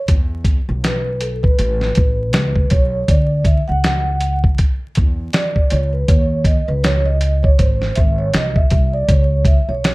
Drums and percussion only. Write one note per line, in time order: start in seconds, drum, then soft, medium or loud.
0.08 kick loud
0.08 closed hi-hat medium
0.44 kick medium
0.44 closed hi-hat medium
0.84 snare medium
0.84 closed hi-hat medium
1.21 closed hi-hat medium
1.44 kick medium
1.59 closed hi-hat medium
1.81 snare soft
1.95 kick medium
1.95 closed hi-hat medium
2.33 snare loud
2.33 closed hi-hat medium
2.56 kick medium
2.70 kick medium
2.70 closed hi-hat medium
3.08 kick loud
3.08 closed hi-hat medium
3.45 kick medium
3.45 closed hi-hat medium
3.84 snare loud
3.84 closed hi-hat medium
4.21 closed hi-hat medium
4.44 kick medium
4.58 kick medium
4.58 closed hi-hat medium
4.95 kick medium
4.95 closed hi-hat medium
5.33 snare loud
5.33 closed hi-hat medium
5.56 kick medium
5.70 closed hi-hat medium
6.08 kick loud
6.08 closed hi-hat medium
6.45 kick medium
6.45 closed hi-hat medium
6.84 snare loud
6.84 closed hi-hat medium
7.21 closed hi-hat medium
7.44 kick medium
7.59 kick medium
7.59 closed hi-hat medium
7.82 snare soft
7.95 kick medium
7.95 closed hi-hat medium
8.34 snare loud
8.34 closed hi-hat medium
8.56 kick medium
8.70 kick medium
8.70 closed hi-hat medium
9.08 kick loud
9.08 closed hi-hat medium
9.45 kick loud
9.45 closed hi-hat medium
9.84 snare loud
9.84 closed hi-hat medium